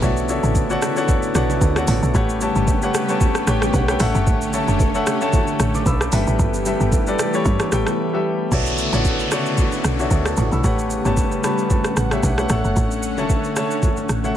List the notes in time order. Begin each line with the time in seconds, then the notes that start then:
Already playing: A3
0.02 B1 C#3 D3 B3 E4 F#4 A4 C#5 D5 E5, kick, low conga, shaker
0.17 shaker
0.29 B3 F#4 A4 C#5 D5 E5, low bongo, shaker
0.43 A1, shaker
0.55 kick, high bongo, shaker
0.70 B3 F#4 A4 C#5 D5 F#5, shaker
0.82 cross-stick, low bongo, shaker
0.96 B3 F#4 A4 C#5 D5 F#5, shaker
1.08 kick, low conga, shaker
1.23 shaker
1.35 B1 B3 F#4 A4 C#5 D5 F#5, cross-stick, shaker
1.50 low bongo, shaker
1.61 D2, kick, high bongo, shaker
1.76 B3 F#4 A4 C#5 D5 F#5, cross-stick, high bongo, shaker
1.87 A1, open hi-hat, low conga, shaker
2.03 B1, shaker
2.14 A1 C#3 G3 A3 B3 G4 B4 C#5 F#5, kick, low conga, shaker
2.29 shaker
2.41 A3 G4 B4 C#5 A5, low bongo, shaker
2.56 G1, shaker
2.67 kick, high bongo, shaker
2.82 A3 G4 B4 C#5 F#5, shaker
2.94 cross-stick, low bongo, shaker
3.09 A3 G4 B4 C#5 A5, shaker
3.21 kick, low conga, shaker
3.35 cross-stick, shaker
3.47 A1 A3 G4 B4 C#5 G5 A5, cross-stick, shaker
3.62 cross-stick, low bongo, shaker
3.74 B1 F#5, kick, high bongo, shaker
3.88 A3 G4 B4 C#5 G5, cross-stick, high bongo, shaker
4.00 A1 D3 A3 C#4 A4 C#5 E5 F#5, cross-stick, open hi-hat, low conga, shaker
4.15 F#1, shaker
4.27 A1, kick, low conga, shaker
4.42 shaker
4.53 A3 A4 C#5 E5 A5, low bongo, shaker
4.68 F#1, shaker
4.80 kick, high bongo, shaker
4.95 A3 A4 C#5 E5 F#5, shaker
5.07 cross-stick, low bongo, shaker
5.21 A3 A4 C#5 E5 A5, shaker
5.33 kick, low conga, shaker
5.47 shaker
5.60 A1, cross-stick, shaker
5.74 A5 D6, low bongo, shaker
5.86 B1 B5 E6, kick, high bongo, shaker
6.00 A5 D6, cross-stick, high bongo, shaker
6.12 G1 E3 G3 A3 B3 G4 A4 B4 E5, open hi-hat, low conga, shaker
6.27 A1, shaker
6.39 G1, kick, low conga, shaker
6.54 shaker
6.66 G3 G4 A4 B4 E5, low bongo, shaker
6.80 G1, shaker
6.92 kick, high bongo, shaker
7.07 G3 G4 A4 B4 D5, shaker
7.19 cross-stick, low bongo, shaker
7.34 G3 G4 A4 B4 C#5, shaker
7.45 G2, kick, low conga, shaker
7.60 cross-stick, high bongo, shaker
7.72 A1 G3 G4 A4 B4 G5, cross-stick, shaker
7.87 cross-stick, low bongo, shaker
8.13 G3 G4 A4 B4 E5
8.52 B1 C#3 D3 A3 B3 E4 F#4 A4 C#5 D5 E5, kick, downlifter, low conga, shaker
8.66 shaker
8.78 shaker
8.93 A1 B3 F#4 A4 C#5 D5 F#5, low bongo, shaker
9.05 kick, high bongo, shaker
9.19 shaker
9.31 B3 F#4 A4 C#5 D5 F#5, cross-stick, low bongo, shaker
9.46 shaker
9.58 kick, low conga, shaker
9.72 high bongo, shaker
9.84 B1, cross-stick, shaker
9.99 B3 F#4 A4 C#5 D5 E5, low bongo, shaker
10.11 D2, kick, high bongo, shaker
10.25 E5 A5, cross-stick, high bongo, shaker
10.37 A1 F#5 C#6, low conga, shaker
10.52 B1 B5 E6, shaker
10.64 A1 C#3 G3 A3 B3 G4 B4 C#5 F#5, kick, low conga, shaker
10.79 shaker
10.90 shaker
11.05 G1 A3 G4 B4 C#5 A5, low bongo, shaker
11.17 kick, high bongo, shaker
11.32 shaker
11.44 A3 G4 B4 C#5 A5 B5, cross-stick, low bongo, shaker
11.58 shaker
11.70 A5, kick, low conga, shaker
11.84 cross-stick, high bongo, shaker
11.97 A1 F#5, cross-stick, shaker
12.11 A3 G4 B4 C#5 E5, cross-stick, low bongo, shaker
12.23 B1 F#5, kick, high bongo, shaker
12.38 A3 G4 B4 C#5 F#5, cross-stick, high bongo, shaker
12.49 A1 D3 A3 C#4 A4 C#5 E5 F#5, cross-stick, low conga, shaker
12.64 F#1, shaker
12.76 A1, kick, low conga, shaker
12.91 shaker
13.03 shaker
13.18 F#1 A3 A4 C#5 E5 A5, low bongo, shaker
13.29 kick, high bongo, shaker
13.44 shaker
13.56 A3 A4 C#5 E5 A5, cross-stick, low bongo, shaker
13.71 shaker
13.83 kick, low conga, shaker
13.97 high bongo, shaker
14.09 A1, cross-stick, shaker
14.24 A3 A4 C#5 E5 F#5, low bongo, shaker